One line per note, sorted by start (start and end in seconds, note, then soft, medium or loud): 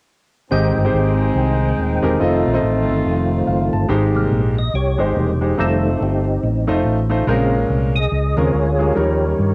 0.50 0.73 G#1 loud
0.50 1.15 G#2 medium
0.50 3.87 D#3 medium
0.50 2.19 G#3 medium
0.50 2.18 C4 medium
0.50 0.78 C4 medium
0.50 3.86 C4 medium
0.50 3.86 D#4 medium
0.50 0.78 G4 medium
0.50 0.79 G#4 medium
0.50 0.79 D#5 medium
0.50 2.19 G5 medium
0.76 0.91 G1 medium
0.84 1.46 C4 medium
0.84 1.46 G4 medium
0.84 1.46 G#4 medium
0.84 1.46 C5 medium
0.93 1.30 G#1 medium
1.35 1.72 C2 medium
1.78 2.00 D#1 medium
2.02 2.18 E1 medium
2.02 2.15 C4 medium
2.02 2.16 G4 medium
2.02 2.16 G#4 medium
2.02 2.16 A#4 medium
2.19 2.42 F1 medium
2.19 3.88 A3 medium
2.19 2.47 C4 medium
2.19 3.88 C4 medium
2.19 2.47 F4 medium
2.19 3.88 F4 medium
2.19 2.47 A4 medium
2.19 2.48 D#5 medium
2.46 2.61 A#1 medium
2.53 3.15 C4 medium
2.53 3.15 F4 medium
2.53 3.15 A4 medium
2.53 3.15 D#5 medium
2.63 2.84 A1 medium
2.88 3.03 G1 medium
3.05 3.41 F1 medium
3.47 3.69 F#1 medium
3.47 3.71 F5 medium
3.73 3.87 G1 medium
3.73 4.13 A5 medium
3.89 4.25 G#1 loud
3.89 4.53 G#2 medium
3.89 4.54 G#3 medium
3.89 4.54 D#4 medium
3.89 4.54 G4 medium
3.89 4.55 C5 medium
4.15 4.41 C3 soft
4.15 4.41 G3 soft
4.15 4.42 A#3 medium
4.31 4.68 A#1 medium
4.59 4.75 D#5 medium
4.74 4.95 C2 medium
4.74 4.99 G4 medium
4.74 5.01 C#5 medium
4.98 5.14 G#1 medium
4.98 5.27 G#3 medium
4.98 5.28 D#4 medium
4.98 5.55 D#4 medium
4.98 5.28 G4 medium
4.98 5.55 G4 medium
4.98 5.28 C5 medium
4.98 5.39 C5 medium
5.16 5.52 E1 medium
5.16 5.39 C3 soft
5.16 5.39 G3 soft
5.16 5.40 A#3 soft
5.41 5.54 G#3 medium
5.41 5.54 D#4 medium
5.41 5.54 G4 medium
5.41 5.54 C5 medium
5.58 5.94 F1 medium
5.58 5.89 D#3 soft
5.58 5.90 G3 soft
5.58 6.23 A3 medium
5.58 5.90 A3 medium
5.58 6.01 C4 medium
5.58 6.23 D#4 medium
5.58 6.01 D#4 medium
5.58 6.23 F4 medium
5.58 6.03 A4 medium
5.58 6.24 C5 medium
6.01 6.37 G1 medium
6.01 6.82 C4 soft
6.01 6.82 D#4 soft
6.01 6.41 G4 medium
6.43 6.65 A1 medium
6.67 6.96 A3 medium
6.67 6.96 D#4 medium
6.67 6.97 F4 medium
6.67 6.97 C5 medium
6.85 7.21 A1 loud
7.10 7.23 A3 medium
7.10 7.23 D#4 medium
7.10 7.23 F4 medium
7.10 7.23 C5 medium
7.27 7.63 A#1 medium
7.27 7.91 A#2 medium
7.27 7.58 C#3 medium
7.27 7.92 G#3 medium
7.27 7.59 G#3 soft
7.27 7.34 C4 medium
7.27 7.59 C4 medium
7.27 7.93 F4 medium
7.27 7.93 A#4 medium
7.33 7.95 C#4 medium
7.70 8.06 C2 medium
7.96 8.37 G#4 medium
7.96 8.39 D#5 loud
8.12 8.34 C#2 medium
8.37 8.52 D#2 medium
8.37 8.53 C#3 soft
8.37 8.66 G#3 medium
8.37 8.53 G#3 soft
8.37 8.53 C4 medium
8.37 8.66 C#4 medium
8.37 8.66 F4 medium
8.37 8.93 F4 medium
8.37 8.93 G#4 medium
8.37 8.66 A#4 medium
8.37 8.81 C#5 loud
8.54 8.90 D2 medium
8.78 8.91 G#3 medium
8.78 8.92 C#4 medium
8.78 8.92 F4 medium
8.78 9.55 G4 medium
8.78 8.92 G#4 medium
8.78 9.55 A#4 medium
8.78 9.55 C#5 medium
8.95 9.33 D#2 medium
8.95 9.55 D#3 medium
8.95 9.28 F3 soft
8.95 9.55 G3 medium
8.95 9.28 G3 soft
8.95 9.55 C#4 medium
8.95 9.28 C#4 medium
8.95 9.55 D#4 medium
8.95 9.55 A#4 medium
9.39 9.55 G2 medium